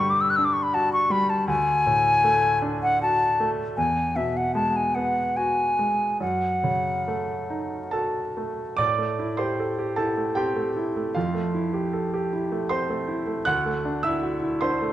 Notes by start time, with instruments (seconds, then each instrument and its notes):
Already playing: grand piano G2 D3, flute C#6
0.00 grand piano G3
0.10 flute D6
0.21 flute E6
0.30 flute F#6
0.36 grand piano D4, flute E6
0.45 flute D6
0.53 flute C#6
0.63 flute B5
0.73 grand piano F#4, flute A5
0.93 flute C#6
1.10 grand piano G3, flute B5
1.30 flute A5
1.48 grand piano D2, flute G#5
1.86 grand piano A2
2.24 grand piano A3
2.62 grand piano D4
2.83 flute F#5
3.02 grand piano F#4, flute A5
3.40 grand piano A3
3.77 grand piano E2, flute G#5
4.16 grand piano B2, flute E5
4.37 flute F#5
4.55 grand piano G#3, flute A5
4.76 flute G#5
4.95 grand piano B3, flute F#5
5.37 grand piano F#4, flute G#5
5.79 grand piano G#3
6.20 grand piano F#2, flute F#5
6.64 grand piano C#3
7.08 grand piano A3
7.50 grand piano D#4
7.91 grand piano F#4 A4 A5
8.37 grand piano A3
8.77 grand piano A2 D5 D6
8.98 grand piano A3
9.19 grand piano E4
9.37 grand piano G4 C5 C6
9.60 grand piano A4
9.79 grand piano G4
9.96 grand piano E4 A4 A5
10.17 grand piano A3
10.35 grand piano C4 G4 G5
10.56 grand piano A3
10.76 grand piano E4
10.96 grand piano A3
11.15 grand piano F2 F4 F5
11.35 grand piano A3
11.55 grand piano E4
11.73 grand piano G4
11.93 grand piano A4
12.14 grand piano G4
12.33 grand piano E4
12.52 grand piano A3
12.69 grand piano C4 C5 C6
12.90 grand piano A3
13.08 grand piano E4
13.27 grand piano A3
13.45 grand piano D2 F#5 F#6
13.66 grand piano A3
13.85 grand piano D4
14.03 grand piano E4 E5 E6
14.22 grand piano F#4
14.42 grand piano E4
14.61 grand piano D4 C5 C6
14.82 grand piano A3